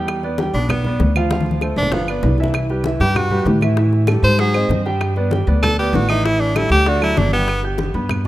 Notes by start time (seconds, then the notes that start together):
Already playing: E2 G3 G4 G5
0.08 high bongo, high conga, claves
0.23 B3 B4 D5, high bongo, high conga
0.38 G3 G4 G5, high bongo, high conga
0.54 B1 B3 D4 B4 D5, high bongo
0.69 B3, high bongo, high conga, low conga, claves
0.84 B3 B4 D5, high conga, low conga
1.00 D2, high bongo, low bongo, high conga
1.15 F3 F4 F5, high bongo, high conga, claves
1.31 F3 F4 F5, high bongo, high conga
1.40 high conga
1.46 high bongo
1.51 high conga
1.61 A3 A4 C5, high bongo, claves
1.76 G1 D4, high bongo
1.82 low conga
1.92 F3 B3 F4 F5, high bongo, low conga
2.08 B3 B4 D5, claves
2.23 C2, high bongo, low bongo, low conga
2.38 E3 E4 E5, high bongo
2.44 low conga
2.54 high bongo, high conga, claves
2.70 G3 G4 B4, high bongo, high conga
2.84 E3 E4 E5, high bongo, high conga
3.00 G2 G3 G4 B4, high bongo
3.15 F#4, high bongo, high conga, low conga, claves
3.30 G3 G4 B4, high conga, low conga
3.45 A2, high bongo, low bongo, high conga
3.61 E3 E4 E5, high bongo, high conga, claves
3.77 E3 E4 E5, high bongo
3.92 high bongo, high conga
4.07 G3 G4 A4, high bongo, high conga, claves
4.23 G#2 C5, high bongo, high conga
4.38 F#3 F#4 G#4 F#5, high bongo, high conga
4.54 C4 C5 D#5, high conga, claves
4.69 G2, high bongo, low bongo, high conga
4.86 G3 G4 G5, high bongo, high conga
5.00 high bongo, high conga, claves
5.16 B3 B4 D5, high bongo, high conga
5.31 G3 G4 G5, high bongo, high conga
5.47 D2 B3 B4 D5, high bongo
5.63 A4, high bongo, high conga, low conga, claves
5.78 B3 G4 B4 D5, high conga
5.93 A1 F#4, high bongo, low bongo, high conga
6.09 E3 D#4 E4 E5, high bongo, claves
6.25 E3 E4 E5, high bongo, high conga
6.40 D4, high bongo, high conga
6.56 G3 E4 G4 A4, high bongo, high conga, claves
6.70 D2 G4, high bongo, high conga
6.86 D3 D4 F#4 D5, high bongo, high conga
7.02 F#3 E4 F#4 A4, high conga, claves
7.16 G1 D4, high bongo, low bongo, high conga
7.32 G3 B3 G4 G5, high bongo, high conga
7.48 high bongo, high conga, claves
7.63 G4 G5 G6, high bongo, high conga
7.78 high bongo, high conga
7.94 G2 B3 B4 B5, high bongo
8.09 high bongo, high conga, low conga, claves